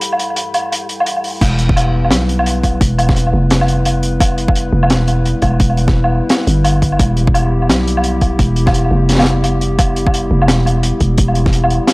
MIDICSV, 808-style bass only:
0, 0, Header, 1, 2, 480
1, 0, Start_track
1, 0, Tempo, 348837
1, 26, Time_signature, 4, 2, 24, 8
1, 16418, End_track
2, 0, Start_track
2, 0, Title_t, "808-style bass"
2, 0, Program_c, 0, 38
2, 1944, Note_on_c, 0, 28, 103
2, 2903, Note_on_c, 0, 35, 100
2, 2924, Note_off_c, 0, 28, 0
2, 3852, Note_off_c, 0, 35, 0
2, 3865, Note_on_c, 0, 28, 101
2, 4573, Note_off_c, 0, 28, 0
2, 4587, Note_on_c, 0, 29, 91
2, 6494, Note_off_c, 0, 29, 0
2, 6503, Note_on_c, 0, 29, 90
2, 6743, Note_on_c, 0, 28, 101
2, 6763, Note_off_c, 0, 29, 0
2, 7349, Note_off_c, 0, 28, 0
2, 7462, Note_on_c, 0, 28, 100
2, 7689, Note_off_c, 0, 28, 0
2, 7704, Note_on_c, 0, 28, 103
2, 8550, Note_off_c, 0, 28, 0
2, 8905, Note_on_c, 0, 31, 90
2, 9613, Note_off_c, 0, 31, 0
2, 9625, Note_on_c, 0, 28, 103
2, 10584, Note_on_c, 0, 35, 100
2, 10604, Note_off_c, 0, 28, 0
2, 11532, Note_off_c, 0, 35, 0
2, 11544, Note_on_c, 0, 28, 102
2, 12252, Note_off_c, 0, 28, 0
2, 12263, Note_on_c, 0, 29, 90
2, 14172, Note_off_c, 0, 29, 0
2, 14185, Note_on_c, 0, 29, 90
2, 14424, Note_on_c, 0, 28, 99
2, 14445, Note_off_c, 0, 29, 0
2, 15030, Note_off_c, 0, 28, 0
2, 15144, Note_on_c, 0, 28, 97
2, 15370, Note_off_c, 0, 28, 0
2, 15386, Note_on_c, 0, 28, 102
2, 16231, Note_off_c, 0, 28, 0
2, 16418, End_track
0, 0, End_of_file